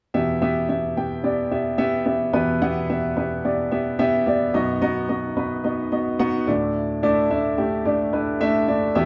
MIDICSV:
0, 0, Header, 1, 2, 480
1, 0, Start_track
1, 0, Key_signature, 1, "minor"
1, 0, Tempo, 550762
1, 122, Time_signature, 4, 2, 24, 8
1, 7890, End_track
2, 0, Start_track
2, 0, Title_t, "Grand piano"
2, 0, Program_c, 0, 0
2, 122, Note_on_c, 0, 47, 49
2, 123, Note_on_c, 0, 76, 84
2, 125, Note_on_c, 0, 59, 75
2, 125, Note_on_c, 0, 67, 70
2, 126, Note_on_c, 0, 64, 71
2, 127, Note_on_c, 0, 40, 52
2, 281, Control_c, 0, 64, 127
2, 332, Note_off_c, 0, 76, 0
2, 333, Note_off_c, 0, 59, 0
2, 333, Note_off_c, 0, 64, 0
2, 333, Note_off_c, 0, 67, 0
2, 364, Note_on_c, 0, 59, 81
2, 364, Note_on_c, 0, 64, 71
2, 364, Note_on_c, 0, 67, 73
2, 364, Note_on_c, 0, 76, 85
2, 572, Note_off_c, 0, 59, 0
2, 572, Note_off_c, 0, 64, 0
2, 572, Note_off_c, 0, 67, 0
2, 572, Note_off_c, 0, 76, 0
2, 601, Note_on_c, 0, 59, 59
2, 603, Note_on_c, 0, 64, 53
2, 603, Note_on_c, 0, 67, 52
2, 603, Note_on_c, 0, 76, 71
2, 811, Note_off_c, 0, 59, 0
2, 812, Note_off_c, 0, 64, 0
2, 812, Note_off_c, 0, 67, 0
2, 812, Note_off_c, 0, 76, 0
2, 846, Note_on_c, 0, 59, 58
2, 846, Note_on_c, 0, 64, 53
2, 846, Note_on_c, 0, 67, 56
2, 848, Note_on_c, 0, 79, 68
2, 1053, Note_off_c, 0, 59, 0
2, 1053, Note_off_c, 0, 64, 0
2, 1053, Note_off_c, 0, 67, 0
2, 1054, Note_off_c, 0, 79, 0
2, 1077, Note_on_c, 0, 64, 56
2, 1079, Note_on_c, 0, 59, 64
2, 1080, Note_on_c, 0, 74, 71
2, 1082, Note_on_c, 0, 67, 56
2, 1289, Note_off_c, 0, 64, 0
2, 1290, Note_off_c, 0, 59, 0
2, 1290, Note_off_c, 0, 74, 0
2, 1291, Note_off_c, 0, 67, 0
2, 1319, Note_on_c, 0, 59, 64
2, 1319, Note_on_c, 0, 64, 56
2, 1320, Note_on_c, 0, 67, 58
2, 1322, Note_on_c, 0, 76, 68
2, 1530, Note_off_c, 0, 59, 0
2, 1530, Note_off_c, 0, 64, 0
2, 1530, Note_off_c, 0, 67, 0
2, 1531, Note_off_c, 0, 76, 0
2, 1550, Note_on_c, 0, 64, 74
2, 1553, Note_on_c, 0, 59, 80
2, 1553, Note_on_c, 0, 76, 92
2, 1554, Note_on_c, 0, 67, 78
2, 1765, Note_off_c, 0, 64, 0
2, 1767, Note_off_c, 0, 59, 0
2, 1767, Note_off_c, 0, 76, 0
2, 1768, Note_off_c, 0, 67, 0
2, 1794, Note_on_c, 0, 59, 61
2, 1794, Note_on_c, 0, 76, 67
2, 1795, Note_on_c, 0, 67, 53
2, 1796, Note_on_c, 0, 64, 55
2, 2007, Note_off_c, 0, 47, 0
2, 2007, Note_off_c, 0, 59, 0
2, 2007, Note_off_c, 0, 76, 0
2, 2008, Note_off_c, 0, 64, 0
2, 2008, Note_off_c, 0, 67, 0
2, 2010, Note_off_c, 0, 40, 0
2, 2033, Note_on_c, 0, 59, 81
2, 2033, Note_on_c, 0, 64, 68
2, 2034, Note_on_c, 0, 47, 56
2, 2034, Note_on_c, 0, 67, 67
2, 2035, Note_on_c, 0, 71, 88
2, 2036, Note_on_c, 0, 40, 57
2, 2247, Note_off_c, 0, 59, 0
2, 2247, Note_off_c, 0, 64, 0
2, 2247, Note_off_c, 0, 67, 0
2, 2248, Note_off_c, 0, 71, 0
2, 2280, Note_on_c, 0, 64, 75
2, 2281, Note_on_c, 0, 78, 89
2, 2282, Note_on_c, 0, 59, 81
2, 2284, Note_on_c, 0, 67, 69
2, 2491, Note_off_c, 0, 59, 0
2, 2491, Note_off_c, 0, 64, 0
2, 2491, Note_off_c, 0, 78, 0
2, 2492, Note_off_c, 0, 67, 0
2, 2522, Note_on_c, 0, 64, 57
2, 2522, Note_on_c, 0, 67, 60
2, 2524, Note_on_c, 0, 59, 60
2, 2524, Note_on_c, 0, 76, 69
2, 2731, Note_off_c, 0, 64, 0
2, 2732, Note_off_c, 0, 59, 0
2, 2732, Note_off_c, 0, 67, 0
2, 2733, Note_off_c, 0, 76, 0
2, 2759, Note_on_c, 0, 67, 57
2, 2760, Note_on_c, 0, 71, 67
2, 2762, Note_on_c, 0, 59, 64
2, 2764, Note_on_c, 0, 64, 57
2, 2970, Note_off_c, 0, 67, 0
2, 2970, Note_off_c, 0, 71, 0
2, 2971, Note_off_c, 0, 59, 0
2, 2972, Note_off_c, 0, 64, 0
2, 3005, Note_on_c, 0, 74, 75
2, 3006, Note_on_c, 0, 59, 66
2, 3006, Note_on_c, 0, 64, 62
2, 3007, Note_on_c, 0, 67, 58
2, 3213, Note_off_c, 0, 59, 0
2, 3213, Note_off_c, 0, 74, 0
2, 3214, Note_off_c, 0, 64, 0
2, 3214, Note_off_c, 0, 67, 0
2, 3238, Note_on_c, 0, 59, 67
2, 3238, Note_on_c, 0, 76, 70
2, 3240, Note_on_c, 0, 64, 60
2, 3240, Note_on_c, 0, 67, 57
2, 3449, Note_off_c, 0, 59, 0
2, 3449, Note_off_c, 0, 76, 0
2, 3451, Note_off_c, 0, 64, 0
2, 3451, Note_off_c, 0, 67, 0
2, 3477, Note_on_c, 0, 59, 84
2, 3478, Note_on_c, 0, 64, 76
2, 3478, Note_on_c, 0, 67, 77
2, 3478, Note_on_c, 0, 76, 98
2, 3689, Note_off_c, 0, 59, 0
2, 3689, Note_off_c, 0, 64, 0
2, 3689, Note_off_c, 0, 67, 0
2, 3689, Note_off_c, 0, 76, 0
2, 3720, Note_on_c, 0, 59, 62
2, 3720, Note_on_c, 0, 64, 59
2, 3722, Note_on_c, 0, 67, 56
2, 3723, Note_on_c, 0, 74, 71
2, 3923, Note_off_c, 0, 47, 0
2, 3924, Note_off_c, 0, 40, 0
2, 3930, Note_off_c, 0, 59, 0
2, 3930, Note_off_c, 0, 64, 0
2, 3931, Note_off_c, 0, 67, 0
2, 3932, Note_off_c, 0, 74, 0
2, 3956, Note_on_c, 0, 35, 54
2, 3956, Note_on_c, 0, 59, 77
2, 3957, Note_on_c, 0, 42, 52
2, 3957, Note_on_c, 0, 63, 68
2, 3958, Note_on_c, 0, 66, 78
2, 3959, Note_on_c, 0, 75, 90
2, 3971, Control_c, 0, 64, 0
2, 4111, Control_c, 0, 64, 127
2, 4169, Note_off_c, 0, 59, 0
2, 4169, Note_off_c, 0, 63, 0
2, 4169, Note_off_c, 0, 66, 0
2, 4170, Note_off_c, 0, 75, 0
2, 4197, Note_on_c, 0, 75, 94
2, 4198, Note_on_c, 0, 59, 82
2, 4200, Note_on_c, 0, 63, 74
2, 4202, Note_on_c, 0, 66, 78
2, 4409, Note_off_c, 0, 59, 0
2, 4409, Note_off_c, 0, 75, 0
2, 4410, Note_off_c, 0, 63, 0
2, 4411, Note_off_c, 0, 66, 0
2, 4437, Note_on_c, 0, 59, 64
2, 4438, Note_on_c, 0, 66, 58
2, 4438, Note_on_c, 0, 75, 71
2, 4439, Note_on_c, 0, 63, 59
2, 4649, Note_off_c, 0, 59, 0
2, 4649, Note_off_c, 0, 66, 0
2, 4649, Note_off_c, 0, 75, 0
2, 4650, Note_off_c, 0, 63, 0
2, 4677, Note_on_c, 0, 59, 62
2, 4677, Note_on_c, 0, 66, 54
2, 4678, Note_on_c, 0, 63, 59
2, 4678, Note_on_c, 0, 71, 70
2, 4889, Note_off_c, 0, 59, 0
2, 4889, Note_off_c, 0, 66, 0
2, 4889, Note_off_c, 0, 71, 0
2, 4890, Note_off_c, 0, 63, 0
2, 4916, Note_on_c, 0, 59, 63
2, 4917, Note_on_c, 0, 75, 72
2, 4919, Note_on_c, 0, 63, 60
2, 4920, Note_on_c, 0, 66, 60
2, 5128, Note_off_c, 0, 59, 0
2, 5129, Note_off_c, 0, 75, 0
2, 5130, Note_off_c, 0, 63, 0
2, 5130, Note_off_c, 0, 66, 0
2, 5158, Note_on_c, 0, 75, 73
2, 5159, Note_on_c, 0, 59, 66
2, 5160, Note_on_c, 0, 63, 59
2, 5162, Note_on_c, 0, 66, 56
2, 5370, Note_off_c, 0, 59, 0
2, 5370, Note_off_c, 0, 63, 0
2, 5370, Note_off_c, 0, 75, 0
2, 5371, Note_off_c, 0, 66, 0
2, 5398, Note_on_c, 0, 59, 90
2, 5398, Note_on_c, 0, 66, 80
2, 5399, Note_on_c, 0, 63, 86
2, 5399, Note_on_c, 0, 78, 97
2, 5604, Note_off_c, 0, 35, 0
2, 5604, Note_off_c, 0, 42, 0
2, 5609, Note_off_c, 0, 59, 0
2, 5609, Note_off_c, 0, 66, 0
2, 5610, Note_off_c, 0, 63, 0
2, 5610, Note_off_c, 0, 78, 0
2, 5639, Note_on_c, 0, 74, 73
2, 5640, Note_on_c, 0, 45, 52
2, 5641, Note_on_c, 0, 62, 62
2, 5642, Note_on_c, 0, 38, 52
2, 5642, Note_on_c, 0, 57, 65
2, 5643, Note_on_c, 0, 64, 60
2, 5654, Control_c, 0, 64, 0
2, 5829, Control_c, 0, 64, 127
2, 6059, Note_off_c, 0, 74, 0
2, 6060, Note_off_c, 0, 62, 0
2, 6061, Note_off_c, 0, 57, 0
2, 6061, Note_off_c, 0, 64, 0
2, 6126, Note_on_c, 0, 57, 85
2, 6127, Note_on_c, 0, 62, 78
2, 6128, Note_on_c, 0, 64, 82
2, 6128, Note_on_c, 0, 74, 92
2, 6334, Note_off_c, 0, 57, 0
2, 6334, Note_off_c, 0, 62, 0
2, 6334, Note_off_c, 0, 64, 0
2, 6334, Note_off_c, 0, 74, 0
2, 6363, Note_on_c, 0, 64, 61
2, 6366, Note_on_c, 0, 57, 61
2, 6366, Note_on_c, 0, 76, 72
2, 6367, Note_on_c, 0, 62, 63
2, 6572, Note_off_c, 0, 64, 0
2, 6573, Note_off_c, 0, 57, 0
2, 6573, Note_off_c, 0, 76, 0
2, 6574, Note_off_c, 0, 62, 0
2, 6605, Note_on_c, 0, 62, 57
2, 6605, Note_on_c, 0, 64, 64
2, 6606, Note_on_c, 0, 67, 74
2, 6607, Note_on_c, 0, 57, 60
2, 6813, Note_off_c, 0, 62, 0
2, 6813, Note_off_c, 0, 64, 0
2, 6813, Note_off_c, 0, 67, 0
2, 6814, Note_off_c, 0, 57, 0
2, 6844, Note_on_c, 0, 57, 69
2, 6844, Note_on_c, 0, 64, 60
2, 6845, Note_on_c, 0, 62, 62
2, 6845, Note_on_c, 0, 74, 73
2, 7052, Note_off_c, 0, 57, 0
2, 7052, Note_off_c, 0, 64, 0
2, 7053, Note_off_c, 0, 62, 0
2, 7053, Note_off_c, 0, 74, 0
2, 7085, Note_on_c, 0, 62, 65
2, 7086, Note_on_c, 0, 71, 70
2, 7087, Note_on_c, 0, 57, 67
2, 7087, Note_on_c, 0, 64, 61
2, 7293, Note_off_c, 0, 62, 0
2, 7293, Note_off_c, 0, 71, 0
2, 7294, Note_off_c, 0, 57, 0
2, 7294, Note_off_c, 0, 64, 0
2, 7325, Note_on_c, 0, 57, 89
2, 7327, Note_on_c, 0, 64, 76
2, 7327, Note_on_c, 0, 76, 101
2, 7328, Note_on_c, 0, 62, 79
2, 7526, Note_off_c, 0, 45, 0
2, 7527, Note_off_c, 0, 38, 0
2, 7533, Note_off_c, 0, 57, 0
2, 7534, Note_off_c, 0, 62, 0
2, 7534, Note_off_c, 0, 64, 0
2, 7534, Note_off_c, 0, 76, 0
2, 7565, Note_on_c, 0, 64, 61
2, 7567, Note_on_c, 0, 62, 57
2, 7568, Note_on_c, 0, 57, 65
2, 7568, Note_on_c, 0, 74, 73
2, 7773, Note_off_c, 0, 64, 0
2, 7774, Note_off_c, 0, 57, 0
2, 7774, Note_off_c, 0, 62, 0
2, 7774, Note_off_c, 0, 74, 0
2, 7802, Note_on_c, 0, 76, 96
2, 7804, Note_on_c, 0, 40, 60
2, 7805, Note_on_c, 0, 47, 61
2, 7805, Note_on_c, 0, 59, 87
2, 7805, Note_on_c, 0, 64, 80
2, 7806, Note_on_c, 0, 67, 79
2, 7812, Control_c, 0, 64, 0
2, 7890, Note_off_c, 0, 40, 0
2, 7890, Note_off_c, 0, 47, 0
2, 7890, Note_off_c, 0, 59, 0
2, 7890, Note_off_c, 0, 64, 0
2, 7890, Note_off_c, 0, 67, 0
2, 7890, Note_off_c, 0, 76, 0
2, 7890, End_track
0, 0, End_of_file